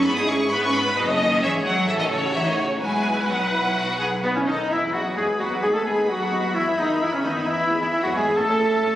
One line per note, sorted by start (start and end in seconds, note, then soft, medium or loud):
0.05 0.51 G#1 medium
0.05 0.17 B3 loud
0.05 0.52 E4 medium
0.05 0.51 G#4 loud
0.05 0.51 G#4 medium
0.05 0.17 B5 loud
0.17 0.23 D#4 medium
0.17 0.29 D#6 loud
0.29 0.38 C#4 medium
0.29 0.52 C#6 loud
0.52 0.97 G#2 medium
0.52 0.63 B3 loud
0.52 0.97 E4 medium
0.52 0.97 B4 medium
0.52 0.63 B5 loud
0.63 0.75 C#4 medium
0.63 0.75 C#6 loud
0.75 0.97 B3 loud
0.75 0.97 B5 loud
0.97 1.39 F#1 medium
0.97 1.02 B2 loud
0.97 1.84 C#4 medium
0.97 1.39 A4 medium
0.97 1.09 B4 loud
0.97 1.42 D#5 loud
1.09 1.20 C#3 medium
1.09 1.20 C#5 medium
1.19 1.42 D#3 loud
1.19 1.42 D#5 loud
1.42 1.88 G#1 medium
1.42 1.51 E3 loud
1.42 1.88 G#4 medium
1.42 1.88 C#5 medium
1.42 1.50 E5 loud
1.64 1.88 F#3 loud
1.64 1.87 F#5 loud
1.88 2.81 A1 medium
1.88 1.99 E3 loud
1.88 2.33 C#4 medium
1.88 2.80 F#4 medium
1.88 2.33 A4 medium
1.88 1.92 E5 loud
1.99 2.11 D#3 medium
1.99 2.04 D#5 loud
2.10 2.34 C#3 medium
2.10 2.33 C#5 loud
2.34 2.45 E3 medium
2.34 2.80 D#4 medium
2.34 2.80 C#5 medium
2.34 2.46 E5 loud
2.46 2.57 D#3 medium
2.46 2.58 D#5 medium
2.57 2.81 C#3 medium
2.57 2.66 C#5 medium
2.80 3.74 B1 medium
2.80 3.27 G#3 medium
2.80 3.28 E4 medium
2.80 3.27 F#4 medium
2.80 4.44 B4 medium
2.80 3.27 G#5 medium
3.28 4.24 F#3 medium
3.28 3.39 B3 medium
3.28 4.23 F#5 medium
3.40 3.52 D#4 medium
3.52 3.76 E4 medium
3.75 4.49 B1 medium
3.75 3.99 F#4 medium
3.99 4.07 G#4 medium
4.23 4.29 B2 medium
4.23 4.29 B3 medium
4.23 4.35 B3 medium
4.23 4.29 B3 medium
4.23 4.28 F#4 medium
4.23 4.34 B4 medium
4.23 4.35 B4 medium
4.35 4.41 C#3 medium
4.35 4.41 C#4 soft
4.35 4.47 C#4 soft
4.35 4.41 C#4 soft
4.35 4.41 C#4 medium
4.35 4.40 E4 medium
4.35 4.47 C#5 medium
4.47 4.58 D#3 medium
4.47 4.55 D#4 medium
4.47 4.57 D#4 medium
4.47 4.58 D#4 medium
4.47 4.71 D#4 medium
4.47 4.70 A4 medium
4.47 4.70 D#5 medium
4.70 4.75 E2 soft
4.70 4.93 E3 soft
4.70 4.75 B3 soft
4.70 4.95 E4 soft
4.70 4.93 E4 medium
4.70 4.81 E4 soft
4.70 6.51 B4 soft
4.70 4.76 E5 soft
4.70 4.79 E5 soft
4.70 8.33 B5 soft
4.82 4.87 E2 soft
4.82 4.87 B3 soft
4.82 4.87 E4 soft
4.93 4.98 E2 soft
4.93 5.16 F#3 soft
4.93 4.99 B3 soft
4.93 5.16 F#4 soft
4.93 5.02 F#4 medium
4.93 5.16 F#4 soft
4.93 4.99 G#4 soft
4.93 5.00 F#5 soft
4.93 5.17 F#5 soft
5.05 5.10 E2 soft
5.05 5.09 B3 soft
5.17 5.22 E2 soft
5.17 5.41 G#3 soft
5.17 5.21 B3 soft
5.17 5.21 E4 soft
5.17 5.25 G#4 medium
5.17 5.27 G#4 soft
5.17 5.41 G#4 soft
5.17 5.27 G#4 soft
5.17 5.39 G#5 soft
5.17 5.25 G#5 soft
5.39 5.44 E2 soft
5.39 5.63 F#3 soft
5.39 5.45 B3 soft
5.39 5.62 F#4 medium
5.39 5.62 F#4 soft
5.39 5.50 F#4 soft
5.39 5.64 F#5 soft
5.39 5.48 F#5 soft
5.51 5.56 E2 soft
5.51 5.56 B3 soft
5.51 5.56 E4 soft
5.62 5.67 D#2 soft
5.62 5.75 G#3 medium
5.62 5.68 B3 soft
5.62 5.68 D#4 soft
5.62 5.75 G#4 soft
5.62 5.74 G#4 soft
5.62 5.67 G#4 medium
5.62 5.73 G#4 soft
5.62 5.73 G#5 medium
5.62 5.67 G#5 soft
5.73 5.79 D#2 soft
5.73 5.86 A3 soft
5.73 5.78 B3 soft
5.73 5.79 F#4 soft
5.73 5.84 A4 soft
5.73 5.85 A4 soft
5.73 5.79 A4 soft
5.73 5.87 A5 soft
5.73 5.80 A5 soft
5.85 5.90 D#2 soft
5.85 6.10 G#3 soft
5.85 5.91 B3 soft
5.85 5.95 G#4 soft
5.85 6.09 G#4 soft
5.85 6.10 G#4 soft
5.85 5.94 G#4 medium
5.85 5.91 A4 soft
5.85 6.10 G#5 soft
5.85 6.09 G#5 soft
5.97 6.02 D#2 soft
5.97 6.02 B3 soft
5.97 6.01 D#4 soft
6.08 6.55 F#3 soft
6.08 6.54 F#4 medium
6.08 6.57 F#4 soft
6.08 6.56 F#4 soft
6.08 6.54 F#4 medium
6.08 6.54 F#5 soft
6.08 6.55 F#5 soft
6.20 6.25 D#2 soft
6.20 6.25 B3 soft
6.20 6.25 A4 soft
6.31 6.36 D#2 soft
6.31 6.36 B3 soft
6.31 6.36 D#4 soft
6.43 6.48 D#2 soft
6.43 6.48 B3 soft
6.43 6.48 F#4 soft
6.54 6.59 E2 soft
6.54 6.66 E3 soft
6.54 6.60 B3 soft
6.54 6.80 E4 medium
6.54 6.78 E4 soft
6.54 6.80 E4 medium
6.54 6.63 E4 medium
6.54 6.78 E5 soft
6.54 8.96 E5 soft
6.66 6.71 E2 soft
6.66 6.71 B3 soft
6.66 6.71 E4 soft
6.78 6.82 E2 soft
6.78 7.01 D#3 soft
6.78 6.83 B3 soft
6.78 7.01 D#4 soft
6.78 7.00 D#4 soft
6.78 7.01 D#4 medium
6.78 7.01 D#4 soft
6.78 6.83 G#4 soft
6.78 7.01 D#5 soft
6.89 6.94 E2 soft
6.89 6.94 B3 soft
7.01 7.05 E2 soft
7.01 7.13 E3 soft
7.01 7.06 B3 soft
7.01 7.12 E4 soft
7.01 7.14 E4 soft
7.01 7.06 E4 soft
7.01 7.13 E4 medium
7.01 7.05 E5 soft
7.01 7.06 E5 soft
7.12 7.25 C#3 soft
7.12 7.24 C#4 soft
7.12 7.18 C#4 soft
7.12 7.25 C#4 medium
7.12 7.24 C#5 soft
7.12 7.18 C#5 soft
7.23 7.28 E2 medium
7.23 7.48 D#3 soft
7.23 7.29 B3 soft
7.23 7.47 D#4 soft
7.23 7.49 D#4 soft
7.23 7.47 D#4 medium
7.23 7.32 D#5 soft
7.23 7.49 D#5 soft
7.35 7.40 E2 soft
7.35 7.40 B3 soft
7.35 7.40 E4 soft
7.47 7.51 E2 medium
7.47 7.80 E3 medium
7.47 7.51 B3 soft
7.47 7.80 E4 soft
7.47 7.81 E4 medium
7.47 7.79 E5 soft
7.47 7.80 E5 medium
7.58 7.63 E2 soft
7.58 7.63 B3 soft
7.58 7.63 E4 soft
7.69 7.74 E2 soft
7.69 7.74 B3 soft
7.69 7.74 G#4 soft
7.80 7.85 E2 medium
7.80 7.91 E3 soft
7.80 7.85 B3 medium
7.80 7.92 E4 soft
7.80 7.91 E4 soft
7.80 7.87 E4 soft
7.80 7.85 E5 soft
7.80 7.86 E5 soft
7.91 7.97 E3 soft
7.91 8.03 E4 medium
7.91 8.02 E4 medium
7.91 7.97 E4 medium
7.91 8.03 E5 soft
7.91 8.02 E5 soft
8.03 8.08 E2 soft
8.03 8.15 F#3 soft
8.03 8.08 B3 soft
8.03 8.16 F#4 soft
8.03 8.08 F#4 soft
8.03 8.15 F#4 soft
8.03 8.15 F#4 medium
8.03 8.08 G#4 soft
8.03 8.14 F#5 soft
8.14 8.19 E2 soft
8.14 8.25 G#3 medium
8.14 8.19 B3 medium
8.14 8.38 G#4 medium
8.14 8.37 G#4 medium
8.14 8.37 G#4 soft
8.14 8.37 G#4 medium
8.14 8.37 G#5 medium
8.14 8.39 G#5 medium
8.26 8.30 E2 soft
8.26 8.30 B3 soft
8.26 8.30 E4 soft
8.36 8.41 A1 medium
8.36 8.41 A3 soft
8.36 8.96 A3 medium
8.36 8.41 C#4 soft
8.36 8.96 A4 medium
8.36 8.96 A5 medium
8.36 8.96 A5 soft
8.36 8.75 A5 medium
8.48 8.53 A1 soft
8.48 8.53 C#4 soft
8.59 8.64 A1 soft
8.59 8.64 C#4 soft
8.59 8.64 E4 soft
8.70 8.75 A1 medium
8.70 8.75 A3 medium
8.70 8.75 C#4 medium
8.82 8.86 A1 soft
8.82 8.87 C#4 soft